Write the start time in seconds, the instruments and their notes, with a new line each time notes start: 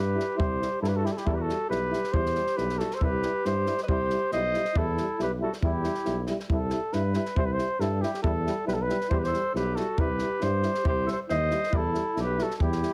Already playing: tuba G2, clarinet G4, flugelhorn B4
0.15 euphonium G3 E4
0.20 snare
0.36 tuba C2, euphonium G3 E4, clarinet G4, flugelhorn C5, kick
0.59 euphonium G3 E4, snare
0.81 tuba G2, euphonium G3 E4, clarinet E4, flugelhorn A4, snare
0.88 clarinet G4, flugelhorn B4
0.95 clarinet F#4, flugelhorn A4
1.02 euphonium G3 E4, clarinet E4, snare
1.06 clarinet F#4, flugelhorn G4
1.12 flugelhorn A4
1.16 clarinet E4, flugelhorn G4, snare
1.24 tuba E2, euphonium G3 E4, clarinet E4, flugelhorn A4, kick
1.33 clarinet G4, flugelhorn B4
1.39 clarinet F#4, flugelhorn A4
1.47 euphonium G3 E4, snare
1.68 tuba B1, euphonium G3 E4, clarinet G4, flugelhorn B4, snare
1.90 euphonium G3 E4, snare
2.04 snare
2.13 tuba E2, euphonium G3 E4, clarinet G4, flugelhorn C5, kick
2.26 snare
2.35 euphonium G3 E4, snare
2.47 snare
2.57 tuba B1, euphonium G3 E4, clarinet G4, flugelhorn B4, snare
2.69 snare
2.78 euphonium G3 E4, clarinet F#4, flugelhorn A4, snare
2.91 flugelhorn C5, snare
2.97 euphonium G3, clarinet A4, kick
3.01 tuba C2, euphonium E4, clarinet G4, flugelhorn B4
3.22 euphonium G3 E4, snare
3.45 tuba G2, euphonium G3 E4, clarinet G4, flugelhorn C5, snare
3.66 euphonium G3 E4, snare
3.78 snare
3.82 clarinet B4, flugelhorn D#5
3.87 tuba C2, euphonium G3 E4, clarinet G4, flugelhorn C5, kick
4.10 euphonium G3 E4, snare
4.32 tuba B1, euphonium G3 E4, clarinet C5, flugelhorn D#5, snare
4.53 euphonium G3 E4, snare
4.65 snare
4.75 tuba E2, euphonium G3 E4, clarinet E4, flugelhorn A4, kick
4.96 euphonium G3 E4, snare
5.19 tuba B1, euphonium G3 E4, clarinet G4, flugelhorn B4, snare
5.40 euphonium G3 E4, clarinet F#4, flugelhorn A4
5.53 snare
5.62 tuba E2, euphonium G3 E4, clarinet E4, flugelhorn G4, kick
5.83 euphonium G3 E4, snare
5.94 snare
6.05 tuba B1, euphonium G3 E4, snare
6.27 euphonium G3 E4, snare
6.40 snare
6.49 tuba C2, euphonium G3 E4, flugelhorn A4, kick
6.70 euphonium G3 E4, snare
6.93 tuba G2, euphonium G3 E4, flugelhorn B4, snare
7.14 euphonium G3 E4, snare
7.25 snare
7.36 tuba C2, euphonium G3 E4, flugelhorn C5, kick
7.46 flugelhorn B4
7.53 flugelhorn C5
7.58 euphonium G3 E4, snare
7.80 tuba G2, euphonium G3 E4, flugelhorn A4, snare
8.01 euphonium G3 E4, flugelhorn G4, snare
8.14 snare
8.23 tuba E2, euphonium G3 E4, flugelhorn A4, kick
8.45 euphonium G3 E4, snare
8.66 tuba B1, euphonium G3 E4, flugelhorn B4, snare
8.74 flugelhorn A4
8.82 flugelhorn B4
8.88 euphonium G3 E4, snare
9.01 snare
9.09 tuba E2, euphonium G3 E4, clarinet G4, flugelhorn C5, kick
9.19 clarinet G4, flugelhorn B4
9.24 clarinet A4, flugelhorn C5, snare
9.31 euphonium G3 E4, snare
9.54 tuba B1, euphonium G3 E4, clarinet G4, flugelhorn B4, snare
9.76 euphonium G3 E4, clarinet F#4, flugelhorn A4, snare
9.98 tuba C2, euphonium G3 E4, clarinet G4, flugelhorn B4, kick
10.19 euphonium G3 E4, snare
10.40 tuba G2, euphonium G3 E4, clarinet G4, flugelhorn C5, snare
10.62 euphonium G3 E4, snare
10.74 snare
10.84 tuba C2, euphonium G3 E4, clarinet G4, kick
10.88 flugelhorn C5
11.05 euphonium G3 E4, clarinet A4, snare
11.11 flugelhorn C5
11.29 tuba D#2, euphonium G3 E4, clarinet C5, flugelhorn D#5, snare
11.49 euphonium G3 E4, snare
11.63 snare
11.71 tuba E2, euphonium G3 E4, clarinet E4, kick
11.77 flugelhorn A4
11.93 euphonium G3 E4, snare
12.14 tuba B1, euphonium G3 E4, snare
12.19 clarinet G4, flugelhorn B4
12.38 euphonium G3 E4, clarinet F#4, snare
12.43 flugelhorn A4
12.51 clarinet F#4, snare
12.57 euphonium G3 E4, flugelhorn A4, kick
12.61 tuba E2, clarinet E4, flugelhorn G4
12.72 snare
12.82 euphonium G3 E4, snare